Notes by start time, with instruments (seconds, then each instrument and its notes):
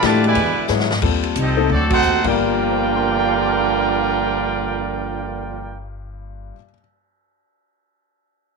Already playing: saxophone section D3 G3 B3 D4
0.02 upright bass A2, trombone section D3 F3 A3, upright piano E3 A3 D4 G4, trumpet section F4 B4 D5 A5, kick, snare, hi-hat pedal, ride
0.24 trombone section B2 D3 G#3, trumpet section E4 B4 D5 G#5, ride
0.35 upright bass E2, saxophone section D3 G#3 E4, kick, ride
0.58 muted upright bass stroke
0.68 upright bass G#2, upright piano F#3 B3 E4 G#4, snare, hi-hat pedal
0.80 snare
0.91 snare
1.02 upright bass D#2, upright piano G3 C4 F4 A4, kick, crash
1.23 ride
1.36 upright bass C2, trombone section G3 C4 D#4, kick, hi-hat pedal, ride
1.42 trumpet section C4 G4 A4 D#5
1.57 upright piano A3 C4 D#4 A4
1.69 upright bass D2, trombone section F#3 A3 D4, trumpet section C4 F#4 A4 D5, mid tom
1.90 trombone section A3 C4 F#4, trumpet section D#4 A4 C5 F#5, kick, crash
2.02 upright bass D#2, hi-hat pedal
2.23 upright bass G1, trombone section G2 D3 F3 A#3, upright piano G2 G3 A#3 F4 A#4, kick, crash
2.27 trumpet section F4 A#4 D5 G5
2.72 upright piano C5
2.78 upright piano F5
2.87 upright piano A5
2.96 upright piano C6
3.06 upright piano F6
3.17 upright piano A6
3.28 upright piano C7